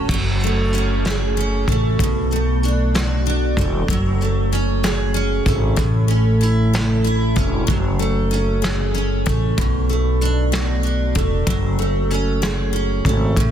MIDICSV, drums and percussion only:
0, 0, Header, 1, 2, 480
1, 0, Start_track
1, 0, Tempo, 632244
1, 70, Time_signature, 6, 3, 24, 8
1, 10258, End_track
2, 0, Start_track
2, 0, Title_t, "Drums"
2, 67, Note_on_c, 9, 49, 83
2, 68, Note_on_c, 9, 36, 101
2, 143, Note_off_c, 9, 49, 0
2, 144, Note_off_c, 9, 36, 0
2, 305, Note_on_c, 9, 42, 45
2, 381, Note_off_c, 9, 42, 0
2, 552, Note_on_c, 9, 42, 72
2, 628, Note_off_c, 9, 42, 0
2, 796, Note_on_c, 9, 42, 61
2, 802, Note_on_c, 9, 38, 104
2, 872, Note_off_c, 9, 42, 0
2, 878, Note_off_c, 9, 38, 0
2, 1036, Note_on_c, 9, 42, 40
2, 1112, Note_off_c, 9, 42, 0
2, 1273, Note_on_c, 9, 36, 80
2, 1280, Note_on_c, 9, 42, 71
2, 1349, Note_off_c, 9, 36, 0
2, 1356, Note_off_c, 9, 42, 0
2, 1513, Note_on_c, 9, 36, 99
2, 1516, Note_on_c, 9, 42, 82
2, 1589, Note_off_c, 9, 36, 0
2, 1592, Note_off_c, 9, 42, 0
2, 1751, Note_on_c, 9, 42, 41
2, 1827, Note_off_c, 9, 42, 0
2, 1998, Note_on_c, 9, 42, 69
2, 2074, Note_off_c, 9, 42, 0
2, 2235, Note_on_c, 9, 42, 61
2, 2241, Note_on_c, 9, 38, 106
2, 2311, Note_off_c, 9, 42, 0
2, 2317, Note_off_c, 9, 38, 0
2, 2471, Note_on_c, 9, 42, 43
2, 2547, Note_off_c, 9, 42, 0
2, 2710, Note_on_c, 9, 36, 84
2, 2719, Note_on_c, 9, 42, 69
2, 2786, Note_off_c, 9, 36, 0
2, 2795, Note_off_c, 9, 42, 0
2, 2949, Note_on_c, 9, 36, 111
2, 2954, Note_on_c, 9, 42, 86
2, 3025, Note_off_c, 9, 36, 0
2, 3030, Note_off_c, 9, 42, 0
2, 3194, Note_on_c, 9, 42, 47
2, 3270, Note_off_c, 9, 42, 0
2, 3435, Note_on_c, 9, 42, 68
2, 3511, Note_off_c, 9, 42, 0
2, 3668, Note_on_c, 9, 42, 67
2, 3675, Note_on_c, 9, 38, 103
2, 3744, Note_off_c, 9, 42, 0
2, 3751, Note_off_c, 9, 38, 0
2, 3907, Note_on_c, 9, 42, 43
2, 3983, Note_off_c, 9, 42, 0
2, 4145, Note_on_c, 9, 36, 80
2, 4152, Note_on_c, 9, 42, 73
2, 4221, Note_off_c, 9, 36, 0
2, 4228, Note_off_c, 9, 42, 0
2, 4381, Note_on_c, 9, 42, 83
2, 4383, Note_on_c, 9, 36, 109
2, 4457, Note_off_c, 9, 42, 0
2, 4459, Note_off_c, 9, 36, 0
2, 4626, Note_on_c, 9, 42, 44
2, 4702, Note_off_c, 9, 42, 0
2, 4876, Note_on_c, 9, 42, 64
2, 4952, Note_off_c, 9, 42, 0
2, 5117, Note_on_c, 9, 42, 61
2, 5123, Note_on_c, 9, 38, 103
2, 5193, Note_off_c, 9, 42, 0
2, 5199, Note_off_c, 9, 38, 0
2, 5347, Note_on_c, 9, 42, 46
2, 5423, Note_off_c, 9, 42, 0
2, 5591, Note_on_c, 9, 36, 74
2, 5598, Note_on_c, 9, 42, 71
2, 5667, Note_off_c, 9, 36, 0
2, 5673, Note_off_c, 9, 42, 0
2, 5833, Note_on_c, 9, 36, 100
2, 5837, Note_on_c, 9, 42, 79
2, 5908, Note_off_c, 9, 36, 0
2, 5913, Note_off_c, 9, 42, 0
2, 6073, Note_on_c, 9, 42, 42
2, 6149, Note_off_c, 9, 42, 0
2, 6320, Note_on_c, 9, 42, 72
2, 6396, Note_off_c, 9, 42, 0
2, 6555, Note_on_c, 9, 42, 61
2, 6561, Note_on_c, 9, 38, 109
2, 6631, Note_off_c, 9, 42, 0
2, 6637, Note_off_c, 9, 38, 0
2, 6787, Note_on_c, 9, 42, 44
2, 6863, Note_off_c, 9, 42, 0
2, 7035, Note_on_c, 9, 36, 76
2, 7042, Note_on_c, 9, 42, 66
2, 7111, Note_off_c, 9, 36, 0
2, 7118, Note_off_c, 9, 42, 0
2, 7270, Note_on_c, 9, 42, 76
2, 7272, Note_on_c, 9, 36, 106
2, 7346, Note_off_c, 9, 42, 0
2, 7348, Note_off_c, 9, 36, 0
2, 7510, Note_on_c, 9, 42, 44
2, 7586, Note_off_c, 9, 42, 0
2, 7753, Note_on_c, 9, 42, 66
2, 7829, Note_off_c, 9, 42, 0
2, 7991, Note_on_c, 9, 42, 65
2, 7997, Note_on_c, 9, 38, 100
2, 8067, Note_off_c, 9, 42, 0
2, 8073, Note_off_c, 9, 38, 0
2, 8227, Note_on_c, 9, 42, 44
2, 8303, Note_off_c, 9, 42, 0
2, 8470, Note_on_c, 9, 36, 78
2, 8471, Note_on_c, 9, 42, 70
2, 8546, Note_off_c, 9, 36, 0
2, 8547, Note_off_c, 9, 42, 0
2, 8705, Note_on_c, 9, 42, 80
2, 8707, Note_on_c, 9, 36, 109
2, 8781, Note_off_c, 9, 42, 0
2, 8783, Note_off_c, 9, 36, 0
2, 8947, Note_on_c, 9, 42, 43
2, 9023, Note_off_c, 9, 42, 0
2, 9190, Note_on_c, 9, 42, 70
2, 9266, Note_off_c, 9, 42, 0
2, 9430, Note_on_c, 9, 42, 61
2, 9436, Note_on_c, 9, 38, 99
2, 9506, Note_off_c, 9, 42, 0
2, 9512, Note_off_c, 9, 38, 0
2, 9667, Note_on_c, 9, 42, 45
2, 9743, Note_off_c, 9, 42, 0
2, 9907, Note_on_c, 9, 36, 83
2, 9911, Note_on_c, 9, 42, 69
2, 9983, Note_off_c, 9, 36, 0
2, 9987, Note_off_c, 9, 42, 0
2, 10145, Note_on_c, 9, 42, 84
2, 10147, Note_on_c, 9, 36, 101
2, 10221, Note_off_c, 9, 42, 0
2, 10223, Note_off_c, 9, 36, 0
2, 10258, End_track
0, 0, End_of_file